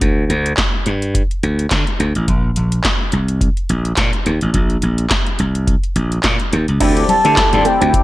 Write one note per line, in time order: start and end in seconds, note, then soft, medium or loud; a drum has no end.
0.01 0.24 D2 loud
0.01 kick loud
0.01 closed hi-hat medium
0.30 0.52 D2 loud
0.30 closed hi-hat medium
0.46 closed hi-hat soft
0.57 kick loud
0.57 snare loud
0.57 clap medium
0.57 closed hi-hat medium
0.86 1.21 G2 medium
0.86 closed hi-hat medium
1.02 closed hi-hat soft
1.15 kick loud
1.15 closed hi-hat loud
1.31 closed hi-hat soft
1.43 1.65 D2 medium
1.43 closed hi-hat medium
1.59 closed hi-hat soft
1.71 1.84 D3 medium
1.71 kick loud
1.71 snare medium
1.71 clap medium
1.71 closed hi-hat medium
1.87 closed hi-hat soft
2.00 2.12 D2 medium
2.00 closed hi-hat medium
2.15 2.25 A1 medium
2.15 closed hi-hat soft
2.28 2.50 A#1 loud
2.28 kick loud
2.28 closed hi-hat medium
2.56 2.79 A#1 medium
2.56 closed hi-hat medium
2.72 closed hi-hat medium
2.84 kick loud
2.84 snare loud
2.84 clap medium
2.84 closed hi-hat medium
3.12 3.48 C2 medium
3.12 closed hi-hat medium
3.28 closed hi-hat soft
3.41 kick loud
3.41 closed hi-hat medium
3.57 closed hi-hat soft
3.69 3.92 A#1 medium
3.69 closed hi-hat medium
3.85 closed hi-hat soft
3.97 4.10 A#2 medium
3.97 kick loud
3.97 snare medium
3.97 clap medium
3.97 closed hi-hat medium
4.13 closed hi-hat soft
4.26 4.39 D#2 medium
4.26 closed hi-hat medium
4.41 4.52 A1 medium
4.41 closed hi-hat soft
4.54 4.77 A#1 loud
4.54 kick loud
4.54 closed hi-hat medium
4.70 closed hi-hat soft
4.82 5.05 A#1 medium
4.82 closed hi-hat medium
4.98 closed hi-hat medium
5.10 kick loud
5.10 snare loud
5.10 clap medium
5.10 closed hi-hat medium
5.26 closed hi-hat soft
5.39 5.74 C2 medium
5.39 closed hi-hat medium
5.55 closed hi-hat soft
5.67 kick loud
5.67 closed hi-hat medium
5.84 closed hi-hat soft
5.96 6.18 A#1 medium
5.96 closed hi-hat medium
6.12 closed hi-hat soft
6.23 6.36 A#2 medium
6.23 kick loud
6.23 snare loud
6.23 clap medium
6.23 closed hi-hat medium
6.40 closed hi-hat soft
6.53 6.65 D#2 medium
6.53 closed hi-hat medium
6.68 6.78 C#2 medium
6.68 closed hi-hat soft
6.80 7.03 D2 loud
6.80 7.15 C4 medium
6.80 6.93 D4 medium
6.80 7.15 E4 medium
6.80 7.15 G4 medium
6.80 7.15 A4 medium
6.80 7.15 D5 medium
6.80 kick loud
6.80 closed hi-hat loud
6.80 crash loud
6.97 closed hi-hat medium
7.09 7.67 A5 loud
7.09 muted clean electric guitar stroke soft
7.09 closed hi-hat medium
7.09 high conga medium
7.24 7.35 D3 loud
7.24 7.34 A3 medium
7.24 7.46 C4 medium
7.24 7.47 E4 medium
7.24 7.47 G4 medium
7.24 7.47 A4 medium
7.24 7.47 D5 medium
7.24 closed hi-hat medium
7.37 muted clean electric guitar stroke soft
7.37 kick loud
7.37 snare loud
7.37 clap loud
7.37 closed hi-hat loud
7.37 muted conga soft
7.53 7.63 G2 loud
7.53 8.03 C4 medium
7.53 8.03 E4 medium
7.53 8.03 G4 medium
7.53 8.03 A4 medium
7.53 8.03 D5 medium
7.53 closed hi-hat medium
7.53 muted conga soft
7.53 low conga medium
7.65 7.77 A3 medium
7.65 8.03 G5 loud
7.65 closed hi-hat medium
7.81 7.91 D2 medium
7.81 7.91 C4 medium
7.81 closed hi-hat medium
7.93 kick loud
7.93 closed hi-hat loud
7.93 muted conga soft